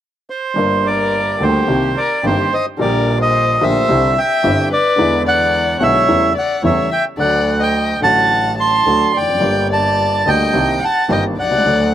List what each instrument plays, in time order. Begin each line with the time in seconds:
0.30 bandoneon C5
0.54 upright piano G1 G2 G3 A#3 D4, double bass G1
0.58 upright piano A#4
0.86 violin A#4, bandoneon D5
1.40 upright piano D2 D3 G3 A#3 D4 A4, double bass D2, violin G4, bandoneon C5
1.68 upright piano C2 C3 D#3 A#3 C4 G4, double bass C2
1.97 violin A#4, bandoneon D5
2.23 double bass G1, upright piano G1 G2 D#3 A#3 C4 G4, violin G4, bandoneon C5
2.52 violin C5, bandoneon D#5
2.77 double bass A#1, upright piano A#1 A#2 D3 G3 A#3, violin A#4, bandoneon D5
2.81 upright piano G4
3.20 violin C5, bandoneon D#5
3.61 upright piano A#1 A#2 D3 A3 A#3 G4, double bass A#1, violin C5, bandoneon E5
3.89 upright piano C2 C3 D3 G3 C4 E4, double bass C2
4.17 violin E5, bandoneon G5
4.44 upright piano G1 G2 D3 G3 C4 E4, double bass G1
4.72 violin B4, bandoneon D5
4.96 double bass E2, upright piano E2 D3 E3 G#3 B3
5.01 upright piano E4
5.26 violin D5, bandoneon F#5
5.80 double bass B1, upright piano B1 B2 D3 G#3 B3 E4, violin C#5, bandoneon E5
6.08 double bass E2, upright piano E2 C#3 E3 G3 A3 E4
6.36 violin D5, bandoneon F#5
6.63 double bass E2, upright piano E2 C#3 E3 G3 A3 E4, violin C#5, bandoneon E5
6.91 violin E5, bandoneon G5
7.17 double bass D2, upright piano D2 D3 F#3 A3 A4, violin D5, bandoneon F#5
7.60 violin D#5, bandoneon G5
8.01 double bass A1, upright piano A1 A2 D3 F#3 A3, violin F#5, bandoneon A5
8.05 upright piano F#4
8.58 violin A5, bandoneon C6
8.85 double bass D2, upright piano D2 D3 F#3 A3 F#4
9.14 double bass F1, violin D5, bandoneon G5
9.22 upright piano E2
9.28 upright piano F2
9.35 upright piano F#2
9.39 upright piano G1 G2 D3 G3 A#3 G4, double bass G1
9.71 violin D5, bandoneon A5
10.26 double bass D2, upright piano D2 D3 G3 A#3 G4, violin D#5, bandoneon G5
10.53 upright piano C2 C3 D#3 A#3 C4 G4, double bass C2
10.82 violin F#5, bandoneon A5
11.09 upright piano G1 G2 D#3 A#3 C4 G4, double bass G1, violin D#5, bandoneon G5
11.38 double bass C2, violin D5, bandoneon F#5
11.44 upright piano B1
11.51 upright piano C2
11.58 upright piano C#2
11.64 double bass D2, upright piano D2 D3 F#3 A3 D4 A4